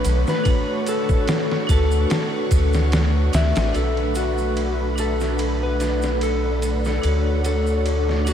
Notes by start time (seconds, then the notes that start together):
Already playing: A3 D4 A4 B4 F#5 B5
0.05 B1, ride, shaker
0.27 B4, snare, shaker
0.44 D4 F#4 C#6, kick, ride, shaker
0.50 C#5
0.86 A4, ride, shaker
1.09 kick, shaker
1.28 snare, ride, shaker
1.52 snare
1.67 D2 D4 F#4, kick, ride, shaker
1.71 A4 B4
1.92 shaker
2.10 snare, ride, shaker
2.51 D2, kick, ride, shaker
2.73 snare, shaker
2.92 snare, ride, shaker
3.33 D2 D4 F#4 D5 E5, snare, ride, shaker
3.56 A1, snare, ride, shaker
3.73 B1 A3 D4 A4 F#5 B5, ride, shaker
3.78 B4
3.97 ride
4.15 F#4, ride, shaker
4.38 shaker
4.56 ride, shaker
4.95 D4 A4, ride, shaker
5.00 A4 B4
5.20 snare, shaker
5.38 ride, shaker
5.63 B4
5.80 snare, ride, shaker
6.02 snare, shaker
6.21 A4, ride, shaker
6.62 ride, shaker
6.85 A4, snare, shaker
7.01 D2 D4 F#4 C#6, ride, shaker
7.07 C#5
7.45 A4, ride, shaker
7.67 shaker
7.86 ride, shaker
8.09 snare
8.25 D4 F#4, ride, shaker